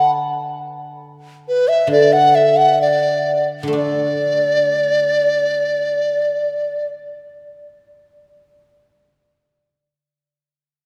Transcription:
0, 0, Header, 1, 3, 480
1, 0, Start_track
1, 0, Tempo, 761421
1, 178, Time_signature, 4, 2, 24, 8
1, 664, Tempo, 826446
1, 1144, Tempo, 896861
1, 1624, Tempo, 960000
1, 4024, Tempo, 977199
1, 5632, End_track
2, 0, Start_track
2, 0, Title_t, "Dizi"
2, 0, Program_c, 0, 73
2, 0, Note_on_c, 0, 78, 72
2, 69, Note_off_c, 0, 78, 0
2, 914, Note_on_c, 0, 71, 60
2, 1028, Note_on_c, 0, 76, 72
2, 1037, Note_off_c, 0, 71, 0
2, 1147, Note_off_c, 0, 76, 0
2, 1163, Note_on_c, 0, 74, 71
2, 1276, Note_on_c, 0, 78, 70
2, 1284, Note_off_c, 0, 74, 0
2, 1397, Note_on_c, 0, 76, 66
2, 1405, Note_off_c, 0, 78, 0
2, 1512, Note_on_c, 0, 78, 66
2, 1520, Note_off_c, 0, 76, 0
2, 1630, Note_off_c, 0, 78, 0
2, 1644, Note_on_c, 0, 74, 60
2, 1975, Note_off_c, 0, 74, 0
2, 2119, Note_on_c, 0, 74, 65
2, 3672, Note_off_c, 0, 74, 0
2, 5632, End_track
3, 0, Start_track
3, 0, Title_t, "Guzheng"
3, 0, Program_c, 1, 107
3, 0, Note_on_c, 1, 50, 50
3, 659, Note_off_c, 1, 50, 0
3, 1140, Note_on_c, 1, 50, 43
3, 2045, Note_off_c, 1, 50, 0
3, 2051, Note_on_c, 1, 50, 42
3, 2073, Note_on_c, 1, 57, 40
3, 2099, Note_on_c, 1, 62, 42
3, 4470, Note_off_c, 1, 62, 0
3, 4887, Note_off_c, 1, 57, 0
3, 5343, Note_off_c, 1, 50, 0
3, 5632, End_track
0, 0, End_of_file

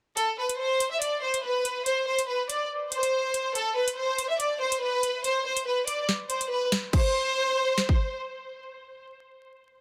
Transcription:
0, 0, Header, 1, 3, 480
1, 0, Start_track
1, 0, Tempo, 422535
1, 195, Time_signature, 4, 2, 24, 8
1, 11143, End_track
2, 0, Start_track
2, 0, Title_t, "Violin section"
2, 0, Program_c, 0, 48
2, 189, Note_on_c, 0, 69, 101
2, 384, Note_off_c, 0, 69, 0
2, 438, Note_on_c, 0, 71, 72
2, 630, Note_off_c, 0, 71, 0
2, 673, Note_on_c, 0, 72, 86
2, 1019, Note_off_c, 0, 72, 0
2, 1043, Note_on_c, 0, 76, 75
2, 1133, Note_off_c, 0, 76, 0
2, 1152, Note_on_c, 0, 74, 74
2, 1346, Note_off_c, 0, 74, 0
2, 1392, Note_on_c, 0, 72, 81
2, 1586, Note_off_c, 0, 72, 0
2, 1634, Note_on_c, 0, 71, 78
2, 2086, Note_off_c, 0, 71, 0
2, 2109, Note_on_c, 0, 72, 92
2, 2304, Note_off_c, 0, 72, 0
2, 2352, Note_on_c, 0, 72, 85
2, 2546, Note_off_c, 0, 72, 0
2, 2590, Note_on_c, 0, 71, 72
2, 2785, Note_off_c, 0, 71, 0
2, 2835, Note_on_c, 0, 74, 71
2, 3028, Note_off_c, 0, 74, 0
2, 3321, Note_on_c, 0, 72, 79
2, 3995, Note_off_c, 0, 72, 0
2, 4038, Note_on_c, 0, 69, 99
2, 4230, Note_off_c, 0, 69, 0
2, 4274, Note_on_c, 0, 71, 84
2, 4467, Note_off_c, 0, 71, 0
2, 4515, Note_on_c, 0, 72, 82
2, 4860, Note_off_c, 0, 72, 0
2, 4882, Note_on_c, 0, 76, 76
2, 4973, Note_off_c, 0, 76, 0
2, 4994, Note_on_c, 0, 74, 80
2, 5187, Note_off_c, 0, 74, 0
2, 5233, Note_on_c, 0, 72, 82
2, 5427, Note_off_c, 0, 72, 0
2, 5472, Note_on_c, 0, 71, 91
2, 5925, Note_off_c, 0, 71, 0
2, 5959, Note_on_c, 0, 72, 87
2, 6150, Note_off_c, 0, 72, 0
2, 6196, Note_on_c, 0, 72, 84
2, 6388, Note_off_c, 0, 72, 0
2, 6439, Note_on_c, 0, 71, 77
2, 6630, Note_off_c, 0, 71, 0
2, 6671, Note_on_c, 0, 74, 77
2, 6866, Note_off_c, 0, 74, 0
2, 7155, Note_on_c, 0, 72, 68
2, 7348, Note_off_c, 0, 72, 0
2, 7390, Note_on_c, 0, 71, 80
2, 7585, Note_off_c, 0, 71, 0
2, 7874, Note_on_c, 0, 72, 92
2, 9269, Note_off_c, 0, 72, 0
2, 11143, End_track
3, 0, Start_track
3, 0, Title_t, "Drums"
3, 193, Note_on_c, 9, 42, 71
3, 307, Note_off_c, 9, 42, 0
3, 562, Note_on_c, 9, 42, 78
3, 676, Note_off_c, 9, 42, 0
3, 914, Note_on_c, 9, 42, 89
3, 1027, Note_off_c, 9, 42, 0
3, 1155, Note_on_c, 9, 42, 71
3, 1269, Note_off_c, 9, 42, 0
3, 1520, Note_on_c, 9, 42, 82
3, 1634, Note_off_c, 9, 42, 0
3, 1874, Note_on_c, 9, 42, 80
3, 1988, Note_off_c, 9, 42, 0
3, 2115, Note_on_c, 9, 42, 69
3, 2228, Note_off_c, 9, 42, 0
3, 2484, Note_on_c, 9, 42, 80
3, 2597, Note_off_c, 9, 42, 0
3, 2835, Note_on_c, 9, 42, 87
3, 2949, Note_off_c, 9, 42, 0
3, 3314, Note_on_c, 9, 42, 75
3, 3428, Note_off_c, 9, 42, 0
3, 3441, Note_on_c, 9, 42, 75
3, 3555, Note_off_c, 9, 42, 0
3, 3795, Note_on_c, 9, 42, 77
3, 3909, Note_off_c, 9, 42, 0
3, 4036, Note_on_c, 9, 42, 72
3, 4149, Note_off_c, 9, 42, 0
3, 4404, Note_on_c, 9, 42, 80
3, 4518, Note_off_c, 9, 42, 0
3, 4755, Note_on_c, 9, 42, 85
3, 4868, Note_off_c, 9, 42, 0
3, 4996, Note_on_c, 9, 42, 74
3, 5110, Note_off_c, 9, 42, 0
3, 5361, Note_on_c, 9, 42, 82
3, 5475, Note_off_c, 9, 42, 0
3, 5715, Note_on_c, 9, 42, 82
3, 5829, Note_off_c, 9, 42, 0
3, 5955, Note_on_c, 9, 42, 73
3, 6069, Note_off_c, 9, 42, 0
3, 6323, Note_on_c, 9, 42, 80
3, 6437, Note_off_c, 9, 42, 0
3, 6675, Note_on_c, 9, 42, 88
3, 6788, Note_off_c, 9, 42, 0
3, 6916, Note_on_c, 9, 38, 59
3, 7029, Note_off_c, 9, 38, 0
3, 7153, Note_on_c, 9, 42, 72
3, 7267, Note_off_c, 9, 42, 0
3, 7280, Note_on_c, 9, 42, 78
3, 7394, Note_off_c, 9, 42, 0
3, 7634, Note_on_c, 9, 38, 109
3, 7635, Note_on_c, 9, 42, 78
3, 7748, Note_off_c, 9, 38, 0
3, 7748, Note_off_c, 9, 42, 0
3, 7875, Note_on_c, 9, 36, 99
3, 7875, Note_on_c, 9, 49, 84
3, 7988, Note_off_c, 9, 36, 0
3, 7988, Note_off_c, 9, 49, 0
3, 8835, Note_on_c, 9, 38, 60
3, 8948, Note_off_c, 9, 38, 0
3, 8962, Note_on_c, 9, 36, 72
3, 9076, Note_off_c, 9, 36, 0
3, 11143, End_track
0, 0, End_of_file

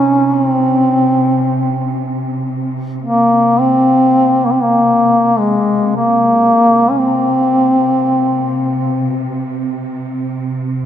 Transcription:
0, 0, Header, 1, 3, 480
1, 0, Start_track
1, 0, Tempo, 500000
1, 10422, End_track
2, 0, Start_track
2, 0, Title_t, "Duduk"
2, 0, Program_c, 0, 69
2, 0, Note_on_c, 0, 61, 75
2, 315, Note_off_c, 0, 61, 0
2, 315, Note_on_c, 0, 61, 69
2, 440, Note_off_c, 0, 61, 0
2, 440, Note_on_c, 0, 60, 69
2, 1957, Note_off_c, 0, 60, 0
2, 2905, Note_on_c, 0, 58, 81
2, 3457, Note_on_c, 0, 60, 91
2, 3471, Note_off_c, 0, 58, 0
2, 4275, Note_on_c, 0, 58, 68
2, 4289, Note_off_c, 0, 60, 0
2, 4338, Note_on_c, 0, 60, 68
2, 4352, Note_off_c, 0, 58, 0
2, 4441, Note_on_c, 0, 58, 81
2, 4456, Note_off_c, 0, 60, 0
2, 5177, Note_on_c, 0, 56, 69
2, 5191, Note_off_c, 0, 58, 0
2, 5717, Note_off_c, 0, 56, 0
2, 5722, Note_on_c, 0, 58, 78
2, 6626, Note_on_c, 0, 61, 50
2, 6640, Note_off_c, 0, 58, 0
2, 6710, Note_on_c, 0, 60, 76
2, 6724, Note_off_c, 0, 61, 0
2, 8978, Note_off_c, 0, 60, 0
2, 10422, End_track
3, 0, Start_track
3, 0, Title_t, "String section"
3, 0, Program_c, 1, 48
3, 0, Note_on_c, 1, 48, 33
3, 6671, Note_off_c, 1, 48, 0
3, 6683, Note_on_c, 1, 48, 43
3, 10422, Note_off_c, 1, 48, 0
3, 10422, End_track
0, 0, End_of_file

